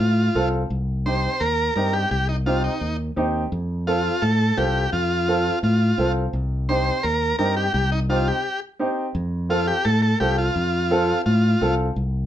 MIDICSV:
0, 0, Header, 1, 4, 480
1, 0, Start_track
1, 0, Tempo, 351700
1, 961, Time_signature, 4, 2, 24, 8
1, 16734, End_track
2, 0, Start_track
2, 0, Title_t, "Transistor combo organ"
2, 0, Program_c, 0, 18
2, 0, Note_on_c, 0, 65, 70
2, 665, Note_off_c, 0, 65, 0
2, 1445, Note_on_c, 0, 72, 85
2, 1916, Note_on_c, 0, 70, 96
2, 1939, Note_off_c, 0, 72, 0
2, 2379, Note_off_c, 0, 70, 0
2, 2395, Note_on_c, 0, 70, 76
2, 2638, Note_on_c, 0, 67, 87
2, 2647, Note_off_c, 0, 70, 0
2, 2864, Note_off_c, 0, 67, 0
2, 2881, Note_on_c, 0, 67, 78
2, 3106, Note_off_c, 0, 67, 0
2, 3122, Note_on_c, 0, 63, 65
2, 3230, Note_off_c, 0, 63, 0
2, 3361, Note_on_c, 0, 65, 78
2, 3586, Note_off_c, 0, 65, 0
2, 3602, Note_on_c, 0, 63, 66
2, 4050, Note_off_c, 0, 63, 0
2, 5285, Note_on_c, 0, 65, 84
2, 5758, Note_on_c, 0, 69, 91
2, 5780, Note_off_c, 0, 65, 0
2, 6243, Note_on_c, 0, 67, 78
2, 6257, Note_off_c, 0, 69, 0
2, 6691, Note_off_c, 0, 67, 0
2, 6723, Note_on_c, 0, 65, 86
2, 7630, Note_off_c, 0, 65, 0
2, 7693, Note_on_c, 0, 65, 69
2, 8360, Note_off_c, 0, 65, 0
2, 9129, Note_on_c, 0, 72, 99
2, 9599, Note_on_c, 0, 70, 81
2, 9622, Note_off_c, 0, 72, 0
2, 10049, Note_off_c, 0, 70, 0
2, 10081, Note_on_c, 0, 70, 94
2, 10307, Note_off_c, 0, 70, 0
2, 10325, Note_on_c, 0, 67, 85
2, 10545, Note_off_c, 0, 67, 0
2, 10561, Note_on_c, 0, 67, 88
2, 10787, Note_off_c, 0, 67, 0
2, 10809, Note_on_c, 0, 63, 79
2, 10916, Note_off_c, 0, 63, 0
2, 11050, Note_on_c, 0, 65, 77
2, 11296, Note_off_c, 0, 65, 0
2, 11299, Note_on_c, 0, 67, 70
2, 11740, Note_off_c, 0, 67, 0
2, 12969, Note_on_c, 0, 65, 88
2, 13191, Note_off_c, 0, 65, 0
2, 13204, Note_on_c, 0, 67, 90
2, 13440, Note_on_c, 0, 69, 96
2, 13452, Note_off_c, 0, 67, 0
2, 13662, Note_off_c, 0, 69, 0
2, 13678, Note_on_c, 0, 69, 83
2, 13905, Note_off_c, 0, 69, 0
2, 13922, Note_on_c, 0, 67, 83
2, 14147, Note_off_c, 0, 67, 0
2, 14167, Note_on_c, 0, 65, 80
2, 15311, Note_off_c, 0, 65, 0
2, 15365, Note_on_c, 0, 65, 69
2, 16034, Note_off_c, 0, 65, 0
2, 16734, End_track
3, 0, Start_track
3, 0, Title_t, "Upright piano"
3, 0, Program_c, 1, 0
3, 477, Note_on_c, 1, 60, 71
3, 482, Note_on_c, 1, 65, 67
3, 482, Note_on_c, 1, 69, 81
3, 815, Note_off_c, 1, 60, 0
3, 818, Note_off_c, 1, 65, 0
3, 818, Note_off_c, 1, 69, 0
3, 1440, Note_on_c, 1, 60, 69
3, 1447, Note_on_c, 1, 63, 60
3, 1454, Note_on_c, 1, 67, 75
3, 1778, Note_off_c, 1, 60, 0
3, 1781, Note_off_c, 1, 63, 0
3, 1784, Note_off_c, 1, 67, 0
3, 2401, Note_on_c, 1, 60, 61
3, 2406, Note_on_c, 1, 63, 67
3, 2415, Note_on_c, 1, 67, 77
3, 2739, Note_off_c, 1, 60, 0
3, 2741, Note_off_c, 1, 63, 0
3, 2746, Note_off_c, 1, 67, 0
3, 3357, Note_on_c, 1, 60, 69
3, 3364, Note_on_c, 1, 63, 66
3, 3368, Note_on_c, 1, 67, 74
3, 3697, Note_off_c, 1, 60, 0
3, 3701, Note_off_c, 1, 63, 0
3, 3702, Note_off_c, 1, 67, 0
3, 4318, Note_on_c, 1, 60, 83
3, 4326, Note_on_c, 1, 63, 76
3, 4332, Note_on_c, 1, 67, 88
3, 4658, Note_off_c, 1, 60, 0
3, 4662, Note_off_c, 1, 63, 0
3, 4665, Note_off_c, 1, 67, 0
3, 5279, Note_on_c, 1, 60, 66
3, 5288, Note_on_c, 1, 65, 63
3, 5292, Note_on_c, 1, 69, 80
3, 5618, Note_off_c, 1, 60, 0
3, 5623, Note_off_c, 1, 65, 0
3, 5625, Note_off_c, 1, 69, 0
3, 6237, Note_on_c, 1, 60, 67
3, 6243, Note_on_c, 1, 65, 60
3, 6249, Note_on_c, 1, 69, 70
3, 6578, Note_off_c, 1, 60, 0
3, 6581, Note_off_c, 1, 65, 0
3, 6584, Note_off_c, 1, 69, 0
3, 7201, Note_on_c, 1, 60, 72
3, 7208, Note_on_c, 1, 65, 67
3, 7212, Note_on_c, 1, 69, 76
3, 7540, Note_off_c, 1, 60, 0
3, 7543, Note_off_c, 1, 65, 0
3, 7545, Note_off_c, 1, 69, 0
3, 8159, Note_on_c, 1, 60, 72
3, 8164, Note_on_c, 1, 65, 63
3, 8174, Note_on_c, 1, 69, 69
3, 8499, Note_off_c, 1, 60, 0
3, 8502, Note_off_c, 1, 65, 0
3, 8507, Note_off_c, 1, 69, 0
3, 9127, Note_on_c, 1, 60, 74
3, 9130, Note_on_c, 1, 63, 64
3, 9134, Note_on_c, 1, 67, 78
3, 9463, Note_off_c, 1, 60, 0
3, 9464, Note_off_c, 1, 63, 0
3, 9467, Note_off_c, 1, 67, 0
3, 10073, Note_on_c, 1, 60, 70
3, 10081, Note_on_c, 1, 63, 68
3, 10084, Note_on_c, 1, 67, 74
3, 10416, Note_off_c, 1, 60, 0
3, 10420, Note_off_c, 1, 63, 0
3, 10422, Note_off_c, 1, 67, 0
3, 11044, Note_on_c, 1, 60, 73
3, 11049, Note_on_c, 1, 63, 63
3, 11054, Note_on_c, 1, 67, 78
3, 11381, Note_off_c, 1, 60, 0
3, 11384, Note_off_c, 1, 63, 0
3, 11386, Note_off_c, 1, 67, 0
3, 12002, Note_on_c, 1, 60, 84
3, 12008, Note_on_c, 1, 63, 71
3, 12014, Note_on_c, 1, 67, 84
3, 12341, Note_off_c, 1, 60, 0
3, 12344, Note_off_c, 1, 63, 0
3, 12346, Note_off_c, 1, 67, 0
3, 12955, Note_on_c, 1, 60, 70
3, 12961, Note_on_c, 1, 65, 65
3, 12967, Note_on_c, 1, 69, 80
3, 13297, Note_off_c, 1, 60, 0
3, 13299, Note_off_c, 1, 65, 0
3, 13303, Note_off_c, 1, 69, 0
3, 13923, Note_on_c, 1, 60, 64
3, 13927, Note_on_c, 1, 65, 60
3, 13937, Note_on_c, 1, 69, 76
3, 14260, Note_off_c, 1, 60, 0
3, 14262, Note_off_c, 1, 65, 0
3, 14267, Note_off_c, 1, 69, 0
3, 14883, Note_on_c, 1, 60, 82
3, 14891, Note_on_c, 1, 65, 76
3, 14893, Note_on_c, 1, 69, 91
3, 15220, Note_off_c, 1, 60, 0
3, 15224, Note_off_c, 1, 65, 0
3, 15225, Note_off_c, 1, 69, 0
3, 15845, Note_on_c, 1, 60, 71
3, 15847, Note_on_c, 1, 65, 67
3, 15857, Note_on_c, 1, 69, 82
3, 16181, Note_off_c, 1, 60, 0
3, 16181, Note_off_c, 1, 65, 0
3, 16187, Note_off_c, 1, 69, 0
3, 16734, End_track
4, 0, Start_track
4, 0, Title_t, "Fingered electric bass"
4, 0, Program_c, 2, 33
4, 0, Note_on_c, 2, 45, 86
4, 383, Note_off_c, 2, 45, 0
4, 478, Note_on_c, 2, 36, 82
4, 864, Note_off_c, 2, 36, 0
4, 960, Note_on_c, 2, 36, 87
4, 1730, Note_off_c, 2, 36, 0
4, 1921, Note_on_c, 2, 39, 79
4, 2306, Note_off_c, 2, 39, 0
4, 2400, Note_on_c, 2, 43, 86
4, 2786, Note_off_c, 2, 43, 0
4, 2881, Note_on_c, 2, 36, 95
4, 3651, Note_off_c, 2, 36, 0
4, 3839, Note_on_c, 2, 39, 79
4, 4225, Note_off_c, 2, 39, 0
4, 4324, Note_on_c, 2, 39, 77
4, 4709, Note_off_c, 2, 39, 0
4, 4804, Note_on_c, 2, 41, 96
4, 5573, Note_off_c, 2, 41, 0
4, 5762, Note_on_c, 2, 45, 85
4, 6148, Note_off_c, 2, 45, 0
4, 6248, Note_on_c, 2, 36, 84
4, 6631, Note_off_c, 2, 36, 0
4, 6725, Note_on_c, 2, 41, 89
4, 7494, Note_off_c, 2, 41, 0
4, 7682, Note_on_c, 2, 45, 93
4, 8068, Note_off_c, 2, 45, 0
4, 8164, Note_on_c, 2, 36, 77
4, 8549, Note_off_c, 2, 36, 0
4, 8644, Note_on_c, 2, 36, 96
4, 9413, Note_off_c, 2, 36, 0
4, 9611, Note_on_c, 2, 39, 99
4, 9993, Note_off_c, 2, 39, 0
4, 10091, Note_on_c, 2, 43, 76
4, 10473, Note_off_c, 2, 43, 0
4, 10567, Note_on_c, 2, 36, 104
4, 11335, Note_off_c, 2, 36, 0
4, 12484, Note_on_c, 2, 41, 98
4, 13253, Note_off_c, 2, 41, 0
4, 13445, Note_on_c, 2, 45, 89
4, 13829, Note_off_c, 2, 45, 0
4, 13929, Note_on_c, 2, 36, 75
4, 14312, Note_off_c, 2, 36, 0
4, 14407, Note_on_c, 2, 41, 98
4, 15174, Note_off_c, 2, 41, 0
4, 15367, Note_on_c, 2, 45, 102
4, 15750, Note_off_c, 2, 45, 0
4, 15849, Note_on_c, 2, 36, 86
4, 16231, Note_off_c, 2, 36, 0
4, 16327, Note_on_c, 2, 36, 94
4, 16734, Note_off_c, 2, 36, 0
4, 16734, End_track
0, 0, End_of_file